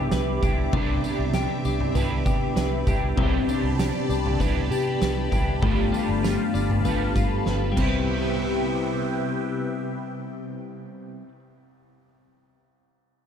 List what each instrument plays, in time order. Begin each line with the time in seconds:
Already playing: clean electric guitar B3 D4 E4 G4 B4, analog synth pad G4 E5 B5 D6
0.11 fingered electric bass C2, clean electric guitar B4, snare, tambourine
0.42 fingered electric bass C2, clean electric guitar D4 E4 G4, kick, floor tom, tambourine
0.72 fingered electric bass C2, clean electric guitar C3 B3 D4 E4, kick, floor tom
0.76 clean electric guitar D4 G4
1.04 clean electric guitar D4, tambourine
1.19 fingered electric bass C2
1.34 clean electric guitar G4, snare, tambourine
1.65 fingered electric bass C2, clean electric guitar D4, tambourine
1.80 floor tom
1.95 fingered electric bass C2, clean electric guitar B3 D4 E4 G4 B4, floor tom, tambourine
2.26 fingered electric bass C3, clean electric guitar G4, kick, tambourine
2.56 fingered electric bass C2, clean electric guitar B4, snare, tambourine
2.87 fingered electric bass C2, clean electric guitar D4 E4 G4, kick, floor tom, tambourine
3.16 fingered electric bass C2, clean electric guitar C3 B3 C4 E4, analog synth pad G4 D5 A5 B5, kick, floor tom
3.21 clean electric guitar D4 G4
3.49 clean electric guitar D4, tambourine
3.63 fingered electric bass C2
3.79 clean electric guitar G4, snare, tambourine
4.09 fingered electric bass C2, clean electric guitar D4, tambourine
4.26 floor tom
4.39 fingered electric bass C2, clean electric guitar B3 D4 E4 G4 B4, kick, floor tom, tambourine
4.71 fingered electric bass C3, clean electric guitar G4, tambourine
5.01 fingered electric bass C2, clean electric guitar B4, snare, tambourine
5.32 fingered electric bass C2, clean electric guitar D4 E4 G4, kick, floor tom, tambourine
5.62 fingered electric bass G1, clean electric guitar G2 G3 A3 B3 F4, analog synth pad F5 A5, kick, floor tom
5.66 clean electric guitar G4 A4
5.92 clean electric guitar D4, tambourine
6.09 fingered electric bass G1
6.23 clean electric guitar F4, snare, tambourine
6.54 fingered electric bass G1, clean electric guitar D4, tambourine
6.70 floor tom
6.84 fingered electric bass G1, clean electric guitar B3 F4 A4 B4, floor tom, tambourine
6.88 clean electric guitar G4
7.16 fingered electric bass G2, clean electric guitar F4, kick, tambourine
7.46 fingered electric bass G1, clean electric guitar B4, snare
7.72 clean electric guitar G3
7.76 fingered electric bass C2, clean electric guitar C3 B3 C4 E4, analog synth pad C3 G4 B4 E5 G5, kick, crash
7.81 clean electric guitar E4 G4 B4
7.89 clean electric guitar B4